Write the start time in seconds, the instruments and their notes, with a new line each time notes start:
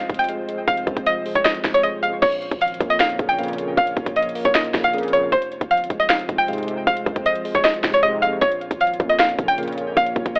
Already playing: tine electric piano F2 F3 G#3, analog synth pad G#3 C4 F4 C5, synth pluck F5
0.09 808-style bass F1, tine electric piano C3, kick, closed hi-hat
0.14 closed hi-hat
0.19 synth pluck G5, closed hi-hat
0.24 closed hi-hat
0.29 tine electric piano G#3, closed hi-hat
0.48 tine electric piano G#3, closed hi-hat
0.67 808-style bass F1, tine electric piano F2, synth pluck F5, kick, closed hi-hat
0.77 closed hi-hat
0.87 808-style bass F2, kick, closed hi-hat
0.97 808-style bass F1, kick, closed hi-hat
1.06 tine electric piano F3, synth pluck D#5, closed hi-hat
1.26 tine electric piano G#3, open hi-hat
1.35 808-style bass F1, synth pluck C#5, kick, closed hi-hat
1.45 tine electric piano F2, synth pluck D#5, finger snap, snare, closed hi-hat
1.55 808-style bass C2, closed hi-hat
1.64 808-style bass F1, tine electric piano C3, finger snap, kick, snare, closed hi-hat
1.74 synth pluck C#5, closed hi-hat
1.83 tine electric piano G#3, synth pluck D#5, closed hi-hat
2.03 808-style bass F2, tine electric piano G#3, synth pluck F5, closed hi-hat
2.13 808-style bass F1
2.22 808-style bass A#1, tine electric piano A#2, analog synth pad A#3 C#4 F4 C#5, synth pluck C#5, kick, closed hi-hat, crash
2.32 closed hi-hat
2.42 closed hi-hat
2.51 808-style bass G#1, kick, closed hi-hat
2.61 tine electric piano F3, synth pluck F5, closed hi-hat
2.68 closed hi-hat
2.74 closed hi-hat
2.81 808-style bass F2, tine electric piano A#3, kick, closed hi-hat
2.90 synth pluck D#5, closed hi-hat
3.00 tine electric piano A#2, synth pluck F5, finger snap, snare, closed hi-hat
3.09 closed hi-hat
3.19 808-style bass A#1, analog polysynth F2 A#2 C#3, tine electric piano C#3, kick, closed hi-hat
3.29 synth pluck G5, closed hi-hat
3.39 analog polysynth F2 A#2 C#3, tine electric piano A#3, closed hi-hat
3.43 closed hi-hat
3.48 closed hi-hat
3.53 closed hi-hat
3.58 tine electric piano A#3, closed hi-hat
3.77 808-style bass A#1, tine electric piano A#2, synth pluck F5, kick, closed hi-hat
3.87 closed hi-hat
3.97 808-style bass A#1, kick, closed hi-hat
4.06 kick, closed hi-hat
4.16 tine electric piano F3, synth pluck D#5, closed hi-hat
4.23 closed hi-hat
4.29 closed hi-hat
4.35 tine electric piano A#3, open hi-hat
4.45 808-style bass A#1, synth pluck C#5, kick, closed hi-hat
4.55 tine electric piano A#2, synth pluck D#5, finger snap, snare, closed hi-hat
4.64 closed hi-hat
4.74 808-style bass A#1, analog polysynth F2 A#2 C#3, tine electric piano C#3, finger snap, kick, snare, closed hi-hat
4.84 synth pluck F5, closed hi-hat
4.93 analog polysynth F2 A#2 C#3, tine electric piano A#3, closed hi-hat
4.98 closed hi-hat
5.03 closed hi-hat
5.08 closed hi-hat
5.13 tine electric piano A#3, synth pluck C#5, closed hi-hat
5.32 808-style bass F1, tine electric piano F2, analog synth pad G#3 C4 F4 C5, synth pluck C5, kick, closed hi-hat
5.42 closed hi-hat
5.52 closed hi-hat
5.61 808-style bass F1, kick, closed hi-hat
5.70 tine electric piano F3, synth pluck F5, closed hi-hat
5.77 808-style bass G1, closed hi-hat
5.84 closed hi-hat
5.90 808-style bass F1, tine electric piano G#3, kick, closed hi-hat
6.00 synth pluck D#5, closed hi-hat
6.09 tine electric piano F2, synth pluck F5, finger snap, snare, closed hi-hat
6.19 closed hi-hat
6.29 808-style bass F1, analog polysynth F2 G#2 C3, tine electric piano C3, kick, closed hi-hat
6.38 synth pluck G5, closed hi-hat
6.48 analog polysynth F2 G#2 C3, tine electric piano G#3, closed hi-hat
6.53 closed hi-hat
6.58 closed hi-hat
6.63 closed hi-hat
6.68 tine electric piano G#3, closed hi-hat
6.87 808-style bass F1, tine electric piano F2, synth pluck F5, kick, closed hi-hat
6.97 closed hi-hat
7.06 808-style bass F2, kick, closed hi-hat
7.16 kick, closed hi-hat
7.26 tine electric piano F3, synth pluck D#5, closed hi-hat
7.35 closed hi-hat
7.45 tine electric piano G#3, open hi-hat
7.55 808-style bass F1, synth pluck C#5, kick, closed hi-hat
7.64 tine electric piano F2, synth pluck D#5, finger snap, snare, closed hi-hat
7.74 808-style bass C2, closed hi-hat
7.84 808-style bass F1, analog polysynth F2 G#2 C3, tine electric piano C3, finger snap, kick, snare, closed hi-hat
7.93 synth pluck C#5, closed hi-hat
8.03 analog polysynth F2 G#2 C3, tine electric piano G#3, synth pluck D#5, closed hi-hat
8.22 808-style bass F2, tine electric piano G#3, synth pluck F5, closed hi-hat
8.32 808-style bass F1
8.41 808-style bass A#1, tine electric piano A#2, analog synth pad A#3 C#4 C#5, synth pluck C#5, kick, closed hi-hat
8.52 closed hi-hat
8.61 closed hi-hat
8.71 808-style bass G#1, kick, closed hi-hat
8.80 tine electric piano F3, synth pluck F5, closed hi-hat
8.87 closed hi-hat
8.94 closed hi-hat
9.00 808-style bass F2, tine electric piano A#3, kick, closed hi-hat
9.09 synth pluck D#5, closed hi-hat
9.19 tine electric piano A#2, synth pluck F5, finger snap, snare, closed hi-hat
9.29 closed hi-hat
9.38 808-style bass A#1, analog polysynth F2 A#2 C#3, tine electric piano C#3, kick, closed hi-hat
9.48 synth pluck G5, closed hi-hat
9.58 analog polysynth F2 A#2 C#3, tine electric piano A#3, closed hi-hat
9.63 closed hi-hat
9.68 closed hi-hat
9.72 closed hi-hat
9.77 tine electric piano A#3, closed hi-hat
9.97 808-style bass A#1, tine electric piano A#2, synth pluck F5, kick, closed hi-hat
10.06 closed hi-hat
10.16 808-style bass A#1, kick, closed hi-hat
10.26 kick, closed hi-hat
10.35 tine electric piano F3, synth pluck D#5, closed hi-hat